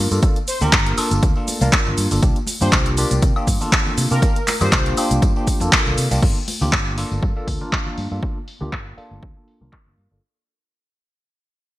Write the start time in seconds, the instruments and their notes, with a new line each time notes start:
0.11 fingered electric bass G2, tine electric piano A#3 D4 F4 A4, tambourine, shaker
0.22 tine electric piano A#3 F4, kick, closed hi-hat, tambourine, shaker
0.36 closed hi-hat, tambourine
0.48 analog polysynth C5, open hi-hat, shaker
0.60 fingered electric bass D2, tine electric piano A#3 D4 F4 G4, analog polysynth A#4, tambourine, low conga, shaker
0.73 fingered electric bass G1, kick, clap, closed hi-hat, shaker
0.86 closed hi-hat, tambourine
0.97 tine electric piano A#3 D4 F4 A4, muted fingered electric bass stroke, open hi-hat, high woodblock, shaker
1.10 fingered electric bass G1, closed hi-hat, tambourine, high conga, shaker
1.23 fingered electric bass D2, kick, closed hi-hat, shaker
1.35 tine electric piano A#3 D4 F4 A4, tambourine
1.48 open hi-hat, high conga, shaker
1.61 fingered electric bass C2, tine electric piano A#3 D4 F4 A#4, tambourine, high conga, low conga, shaker
1.73 kick, clap, closed hi-hat, shaker
1.86 fingered electric bass G1, tambourine, low conga
1.98 fingered electric bass G2, open hi-hat, shaker
2.11 fingered electric bass G1, tine electric piano A#3 D4 F4 A4, open hi-hat, tambourine, shaker
2.23 fingered electric bass C2, tine electric piano D4 F4 G4, kick, closed hi-hat, tambourine, shaker
2.36 closed hi-hat, tambourine
2.47 open hi-hat, high conga, shaker
2.61 fingered electric bass G2, tine electric piano A#3 D4 F4 G4, analog polysynth C5, tambourine, low conga, shaker
2.72 fingered electric bass C2, kick, clap, closed hi-hat, tambourine, shaker
2.86 closed hi-hat, tambourine
2.97 tine electric piano A#3 D4 F4 G4, open hi-hat, shaker
3.11 fingered electric bass C2, closed hi-hat, tambourine, high conga, shaker
3.22 fingered electric bass C3, kick, closed hi-hat, tambourine, shaker
3.36 tine electric piano A#3 D4 F4 G4, tambourine, high woodblock
3.47 fingered electric bass G2, kick, open hi-hat, high conga, shaker
3.61 tine electric piano A#3 D4 F4 A4, tambourine, low conga, shaker
3.72 kick, clap, closed hi-hat, tambourine, shaker
3.86 tambourine, low conga
3.97 fingered electric bass C3, open hi-hat, high conga, shaker
4.10 fingered electric bass C3, tine electric piano A#3 D4 F4 G4, analog polysynth A#4, tambourine, shaker
4.22 tine electric piano A#3 D4 F4 G4, kick, closed hi-hat, tambourine, shaker
4.35 closed hi-hat, tambourine
4.48 clap, open hi-hat, high conga, shaker
4.61 fingered electric bass G2, tine electric piano A#3 D4 F4 G4, analog polysynth C5, tambourine, low conga, high woodblock, shaker
4.72 fingered electric bass C2, kick, clap, closed hi-hat, shaker
4.86 closed hi-hat, tambourine
4.97 tine electric piano A#3 D4 F4 G4, muted fingered electric bass stroke, open hi-hat, high woodblock, shaker
5.11 fingered electric bass C2, closed hi-hat, tambourine, high conga, shaker
5.22 fingered electric bass G2, kick, closed hi-hat, tambourine, shaker
5.36 tine electric piano A#3 D4 F4 G4, tambourine
5.47 kick, open hi-hat, high conga, shaker
5.60 fingered electric bass F2, tine electric piano A#3 D4 F4 A4, closed hi-hat, tambourine, high conga, low conga, shaker
5.72 kick, clap, closed hi-hat, shaker
5.86 fingered electric bass C2, tambourine, low conga
5.98 fingered electric bass C3, open hi-hat, shaker
6.11 fingered electric bass C2, tine electric piano A#3 D4 F4 G4, open hi-hat, tambourine, shaker
6.22 fingered electric bass G1, tine electric piano F4 A4, kick, crash, tambourine
6.36 tambourine
6.48 open hi-hat, high conga
6.61 fingered electric bass D2, tine electric piano A#3 D4 F4 G4, tambourine, low conga
6.73 fingered electric bass G1, kick, clap
6.87 tambourine
6.98 tine electric piano A#3 D4 F4 A4, open hi-hat
7.12 fingered electric bass G1, tambourine, high conga
7.23 fingered electric bass G2, kick, tambourine
7.36 tine electric piano A#3 D4 F4 A4, tambourine
7.48 fingered electric bass D2, kick, open hi-hat, high conga
7.61 tine electric piano A#3 D4 F4 A#4, tambourine, low conga
7.73 kick, clap
7.86 tambourine, low conga
7.98 fingered electric bass G2, open hi-hat, high conga
8.11 fingered electric bass G2, tine electric piano A#3 D4 F4 A4, tambourine
8.23 kick
8.37 tambourine
8.48 open hi-hat
8.61 fingered electric bass D2, tine electric piano A#3 D4 F4 G4, tambourine, low conga
8.73 fingered electric bass G1, kick, clap
8.97 tine electric piano A#3 D4 F4 A4, muted fingered electric bass stroke, open hi-hat
9.11 fingered electric bass G1, tambourine, high conga
9.23 fingered electric bass D2, kick
9.36 tine electric piano A#3 D4 F4 A4
9.48 open hi-hat
9.61 fingered electric bass C2, tine electric piano A#3 D4 F4 A#4, tambourine, high conga, low conga
9.72 kick, clap, tambourine
9.86 fingered electric bass G1, tambourine, low conga
9.98 fingered electric bass G2, open hi-hat
10.11 fingered electric bass G1, tine electric piano A#3 D4 F4 A4